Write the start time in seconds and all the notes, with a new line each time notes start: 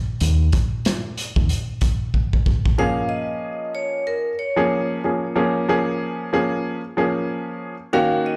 0.20 D#2, closed hi-hat
0.52 kick, closed hi-hat
0.85 cross-stick, snare, closed hi-hat
1.17 closed hi-hat
1.36 D#2, kick
1.49 closed hi-hat
1.81 kick, closed hi-hat
2.14 kick
2.33 kick
2.46 kick
2.66 kick
2.78 F3 A#3 C#4 G#4 F5
3.09 D#5
3.75 C#5
4.07 A#4
4.39 C#5
4.56 F3 A#3 C#4 G#4
5.04 F3 A#3 C#4 G#4
5.35 F3 A#3 C#4 G#4
5.68 F3 A#3 C#4 G#4
6.33 F3 A#3 C#4 G#4
6.97 F3 A#3 C#4 G#4
7.93 D#3 A#3 C#4 F#4 F5
8.26 D#5